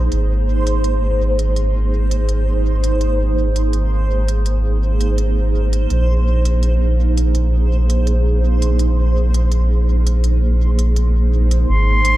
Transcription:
Already playing: A#3 D#4 G#4 C5
0.12 G#1, closed hi-hat
0.67 closed hi-hat
0.84 closed hi-hat
1.39 closed hi-hat
1.56 closed hi-hat
2.11 closed hi-hat
2.29 closed hi-hat
2.84 closed hi-hat
3.01 closed hi-hat
3.56 closed hi-hat
3.73 closed hi-hat
4.28 closed hi-hat
4.46 closed hi-hat
5.01 closed hi-hat
5.18 closed hi-hat
5.73 closed hi-hat
5.90 A#1, closed hi-hat
6.45 closed hi-hat
6.63 closed hi-hat
7.17 closed hi-hat
7.35 closed hi-hat
7.90 closed hi-hat
8.07 closed hi-hat
8.62 closed hi-hat
8.79 closed hi-hat
9.34 closed hi-hat
9.52 closed hi-hat
10.07 closed hi-hat
10.24 closed hi-hat
10.79 closed hi-hat
10.96 closed hi-hat
11.51 closed hi-hat
11.69 G#1 C6
11.79 D#4
11.97 G#4
12.05 closed hi-hat

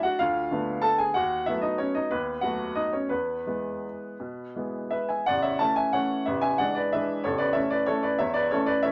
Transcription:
Already playing: F#3 A3 D4
0.03 F#4 F#5
0.19 D2 F4 F5
0.51 D3 A3 B3
0.82 A4 A5
0.98 G#4 G#5
1.14 D#2 F#4 F#5
1.46 F#3 A3 B3 E4 E5
1.62 D#4 D#5
1.78 C#4 C#5
1.95 D#4 D#5
2.11 D#2 B3 B4
2.41 F#3 A3 B3 F#4 F#5
2.75 D#4 D#5
2.93 C#4 C#5
3.09 E2 B3 B4
3.46 E3 G#3 B3
4.20 B2
4.56 E3 G#3 B3
4.91 B4 E5
5.09 E5 G#5
5.26 A0 A1 D5 F#5
5.42 C#5 E5
5.59 E3 A3 C#4 E5 A5
5.76 E5 G#5
5.93 E3 A3 C#4 C#5 F#5
6.26 A0 A1 B4 E5
6.41 E5 G#5
6.58 E3 G#3 D4 D5 F#5
6.75 B4 D5
6.93 E3 G#3 D4 B4 E5
7.24 A0 A1 A4 C#5
7.38 B4 D5
7.53 E3 A3 C#4 C#5 E5
7.70 B4 D5
7.86 E3 A3 C#4 A4 C#5
8.03 B4 D5
8.19 E1 E2 C#5 E5
8.34 B4 D5
8.51 E3 A3 C#4 A4 C#5
8.66 B4 D5
8.83 E3 A3 C#4 C#5 E5

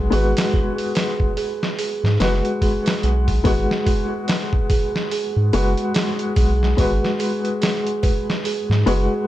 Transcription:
Already playing: G#3 F#4 B4
0.10 G#1 G#3 F#4 G#4, open hi-hat
0.14 B4
0.37 snare, open hi-hat
0.53 G#4, kick
0.78 open hi-hat
0.95 B4, snare, open hi-hat
1.20 kick
1.37 G#4, open hi-hat
1.63 snare
1.79 G#4, open hi-hat
2.04 G#2, snare
2.20 F#1 G#3 F#4 B4, snare, open hi-hat
2.45 closed hi-hat
2.62 G#4, kick, open hi-hat
2.86 snare, open hi-hat
3.03 B1 G#4, closed hi-hat
3.28 kick, open hi-hat
3.44 G#1 G#3 F#4 G#4 B4, kick, open hi-hat
3.71 snare
3.86 G#4, kick, open hi-hat
4.28 B4, snare, open hi-hat
4.53 kick
4.70 G#4, kick, open hi-hat
4.96 snare
5.11 G#4, open hi-hat
5.36 G#2
5.53 F#1 G#3 F#4 B4, open hi-hat
5.77 closed hi-hat
5.94 G#4, snare, open hi-hat
6.19 closed hi-hat
6.36 B1 G#4, kick, open hi-hat
6.63 snare
6.77 G#1 G#3 F#4 B4, kick, open hi-hat
7.04 snare
7.19 G#4, open hi-hat
7.45 closed hi-hat
7.62 G#4, snare, open hi-hat
7.87 closed hi-hat
8.03 B4, kick, open hi-hat
8.30 snare
8.45 G#4, open hi-hat
8.69 G#2, snare
8.86 F#1 G#3 F#4 G#4 B4, open hi-hat

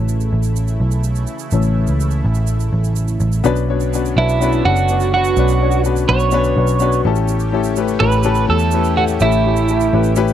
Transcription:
Already playing: A1 C#3 E3 A3 C#4 E4
0.09 shaker
0.20 shaker
0.33 A1
0.43 shaker
0.56 shaker
0.68 shaker
0.80 B1
0.91 shaker
1.04 shaker
1.15 shaker
1.27 shaker
1.39 shaker
1.51 A1 E3 A3 C#4, shaker
1.62 shaker
1.87 C#2, shaker
2.00 shaker
2.11 shaker
2.25 A1
2.35 shaker
2.47 shaker
2.60 shaker
2.73 A1
2.84 shaker
2.96 shaker
3.08 shaker
3.20 A1, shaker
3.32 shaker
3.44 B1 B2 B3 C#4 D4 F#4 B4, shaker
3.56 shaker
3.68 B3 C#4 D4 F#4 C#5
3.80 shaker
3.93 B3 C#4 D4 F#4 B4, shaker
4.05 shaker
4.16 B1 B3 C#4 D4 E4 F#4 A4
4.29 shaker
4.40 B3 C#4 D4 F#4 B4, shaker
4.52 shaker
4.65 F#1 B3 C#4 D4 F#4 A4
4.76 shaker
4.88 B3 C#4 D4 F#4 D5, shaker
5.00 shaker
5.14 B3 C#4 D4 F#4 B4
5.24 shaker
5.37 B1 B2 B3 C#4 D4 F#4 B4, shaker
5.48 shaker
5.62 B3 C#4 D4 F#4 C#5
5.71 shaker
5.84 B3 C#4 D4 F#4 B4, shaker
5.96 shaker
6.09 B1 B3 C#4 D4 F#4 B4 C#5
6.20 shaker
6.31 B3 C#4 D4 F#4 B4, shaker
6.44 shaker
6.56 B1 B3 C#4 D4 F#4 B4
6.67 shaker
6.80 B3 C#4 D4 F#4 B4, shaker
6.92 shaker
7.05 A1 A2 A3 C#4 E4 G4 A4
7.16 shaker
7.28 shaker
7.40 shaker
7.52 A3 C#4 E4 G4 A4
7.64 shaker
7.76 A3 C#4 E4 G4 B4, shaker
7.88 shaker
8.00 A1 A3 C#4 E4 G4 A4 B4
8.12 shaker
8.23 A3 C#4 E4 G4 A4, shaker
8.35 shaker
8.49 E2 A3 C#4 E4 G4 A4
8.59 shaker
8.71 A3 C#4 E4 G4 B4, shaker
8.84 shaker
8.96 A2 A3 C#4 E4 F#4 G4 A4
9.08 shaker
9.20 A1 A3 C#4 E4 G4 A4, shaker
9.32 shaker
9.45 A3 C#4 E4 G4 A4
9.56 shaker
9.68 A3 C#4 E4 G4 A4, shaker
9.80 shaker
9.93 A1 A3 C#4 E4 G4 B4
10.04 shaker
10.16 A3 C#4 E4 G4 B4, shaker
10.28 shaker

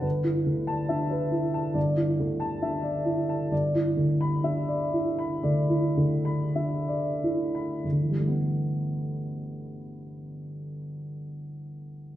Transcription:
0.01 G1 B4
0.24 E4
0.46 D2
0.67 A5
0.89 D4 E5
1.11 B4
1.32 E4
1.54 A5
1.74 G1 D5
1.97 E4
2.19 D2
2.40 A5
2.62 D4 E5
2.83 D5
3.05 E4
3.29 A5
3.52 G1 D5
3.75 E4
3.97 D2
4.21 B5
4.43 D4 E5
4.68 D5
4.93 E4
5.19 B5
5.43 D2 D5
5.70 E4
5.97 D2
6.25 B5
6.55 D4 E5
6.88 D5
7.24 E4
7.55 B5
7.84 G1
7.92 D2
8.01 E3
8.10 G3
8.19 A3
8.28 B3

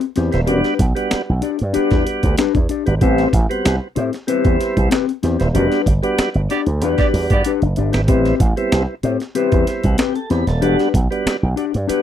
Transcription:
0.01 muted clean electric guitar stroke, closed hi-hat
0.16 E2 C4 G4 C5, snare, closed hi-hat
0.32 D#1 G3 B3 C4 E4, snare, closed hi-hat
0.47 E1 G3 B3 C#4 D4 F#4 A#4, closed hi-hat
0.59 D4 G4 B4
0.64 snare, closed hi-hat
0.79 B1, kick, closed hi-hat
0.95 G3 B3 D4 F#4, muted clean electric guitar stroke, closed hi-hat
1.11 muted clean electric guitar stroke, muted slap bass stroke, snare, closed hi-hat
1.29 B1
1.42 D4 F#4 G4 D5, closed hi-hat
1.59 G2, muted clean electric guitar stroke, closed hi-hat
1.73 G3 B3 D4 F#4 G4 B4, muted slap bass stroke, closed hi-hat
1.91 E2, kick, snare, closed hi-hat
2.06 muted clean electric guitar stroke, closed hi-hat
2.23 D2, kick, closed hi-hat
2.38 D4 G4 B4, snare, closed hi-hat
2.55 E2, muted clean electric guitar stroke, kick, closed hi-hat
2.69 D4 G4 D5, closed hi-hat
2.86 G#1 G3 B3 D4 F#4, closed hi-hat
3.01 A1 G3 B3 C4 E4 G4 B4, kick, closed hi-hat
3.18 snare, closed hi-hat
3.33 A1, kick, closed hi-hat
3.50 G3 B3 C4 F#4, muted clean electric guitar stroke, closed hi-hat
3.65 C2, muted clean electric guitar stroke, snare, closed hi-hat
3.95 A2 C4 E4 G4 C5, closed hi-hat
4.13 muted clean electric guitar stroke, snare, closed hi-hat
4.27 G3 B3 C4 E4 G4 B4, closed hi-hat
4.45 E2, kick, closed hi-hat
4.59 muted clean electric guitar stroke, snare, closed hi-hat
4.77 C2, kick, closed hi-hat
4.90 C4 G4 B4, snare, closed hi-hat
5.08 muted clean electric guitar stroke, closed hi-hat
5.23 E2 C4 G4 C5, snare, closed hi-hat
5.39 D#1 G3 B3 C4 E4, muted clean electric guitar stroke, snare, closed hi-hat
5.54 E1 G3 B3 C#4 D4 F#4 A#4, closed hi-hat
5.67 D4 G4 B4
5.72 snare, closed hi-hat
5.86 G1, kick, closed hi-hat
6.03 G3 B3 D4 F#4, muted clean electric guitar stroke, closed hi-hat
6.18 muted slap bass stroke, muted clean electric guitar stroke, snare, closed hi-hat
6.34 G1, closed hi-hat
6.49 B3 D4 F#4 G4 D5, snare, closed hi-hat
6.66 D2, muted clean electric guitar stroke, closed hi-hat
6.81 E2 G3 B3 D4 F4 G4 B4, closed hi-hat
6.89 F#4
6.98 B3 G4 D5, kick, snare, closed hi-hat
7.14 E2, muted clean electric guitar stroke, open hi-hat
7.30 G2 B3 G4 D5, muted clean electric guitar stroke, kick, closed hi-hat
7.45 D4 G4 B4, closed hi-hat
7.62 F#1, muted clean electric guitar stroke, closed hi-hat
7.76 G1 D4 G4 D5, closed hi-hat
7.93 G#1 G3 B3 D4 E4, muted clean electric guitar stroke, snare, closed hi-hat
8.07 A1 G3 B3 C4 E4 G4 B4, kick, closed hi-hat
8.25 snare, closed hi-hat
8.40 A1, kick, closed hi-hat
8.57 G3 B3 C4 E4, muted clean electric guitar stroke, closed hi-hat
8.72 C2, snare, closed hi-hat
9.03 A2 C4 E4 G4 C5, closed hi-hat
9.20 muted clean electric guitar stroke, snare, closed hi-hat
9.35 G3 B3 C4 E4 G4 B4, closed hi-hat
9.52 E2, kick, closed hi-hat
9.67 snare, closed hi-hat
9.84 C2 F#4, muted clean electric guitar stroke, kick, closed hi-hat
9.98 C4 G4 B4, snare, closed hi-hat
10.15 A4, muted clean electric guitar stroke, closed hi-hat
10.30 E2 C4 G4 B4 C5, snare, closed hi-hat
10.47 D#1 A4, muted clean electric guitar stroke, snare, closed hi-hat
10.61 E1 G3 B3 D4 F#4 G4 B4, closed hi-hat
10.79 snare, closed hi-hat
10.94 B1, kick, closed hi-hat
11.10 G3 B3 D4 F#4, muted clean electric guitar stroke, closed hi-hat
11.25 muted clean electric guitar stroke, muted slap bass stroke, snare, closed hi-hat
11.43 B1
11.56 D4 F#4 G4 D5, closed hi-hat
11.73 G2, muted clean electric guitar stroke, closed hi-hat
11.87 G3 B3 D4 F#4 G4 B4, muted slap bass stroke, closed hi-hat

